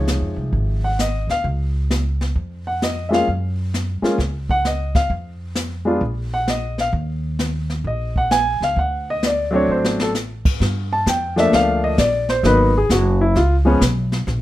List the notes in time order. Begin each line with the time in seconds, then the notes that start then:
Already playing: C#2 C3 F3 G#3 D#4 C#5
0.08 snare, hi-hat pedal
0.21 F2
0.36 C2
0.53 G#1, brush sweep, kick
0.84 F#5
0.99 D#5, snare, hi-hat pedal
1.27 D2 F5, snare
1.44 C#2, brush sweep, kick
1.91 snare, hi-hat pedal
2.21 snare
2.35 F2, brush sweep, kick
2.67 F#5
2.82 D#5, snare, hi-hat pedal
3.09 G#3 A#3 C#4 F4 E5
3.13 F5, snare
3.27 F#2, brush sweep, kick
3.74 snare, hi-hat pedal
4.02 G#3 A#3 C#4 F4, muted upright bass stroke, snare
4.18 C#2, brush sweep, kick, snare
4.49 F#5, kick
4.65 D#5, snare, hi-hat pedal
4.95 F5, kick, snare
5.10 F2, brush sweep, kick
5.55 snare, hi-hat pedal
5.85 G#3 B3 D4 F4
6.01 A#1, brush sweep, kick
6.34 F#5
6.48 D#5, snare, hi-hat pedal
6.78 F5, snare
6.93 D#2, brush sweep, kick
7.39 snare, hi-hat pedal
7.70 snare
7.84 A#1 D#5, brush sweep, kick
8.16 F#5, kick
8.31 G#5, snare, hi-hat pedal
8.61 C#2 F5, snare
8.76 D2 F#5, brush sweep, kick
9.10 D#5
9.23 D5, snare, hi-hat pedal
9.51 F#3 A3 C4 D4
9.56 C#5
9.68 A1 C5
9.85 snare
10.00 A4, snare
10.15 snare, hi-hat pedal
10.45 kick, crash
10.60 G2, brush sweep, kick, snare
10.93 A5
11.06 F2 G5, kick, snare, hi-hat pedal
11.36 F3 A3 A#3 D4 E5, snare
11.52 D2 F5, brush sweep, kick, snare
11.84 D#5
11.98 A#1 D5, kick, snare, hi-hat pedal
12.29 C5, snare
12.43 G#1 F#3 A#3 B3 D#4 B4, brush sweep, kick, snare
12.77 G#4
12.89 F#1 F#4, kick, snare, hi-hat pedal
13.21 E4
13.35 C#2 F4, brush sweep, kick, snare
13.65 F3 G#3 B3 C#4
13.81 B1, kick, snare, hi-hat pedal
14.12 snare
14.27 A#1, brush sweep, kick, snare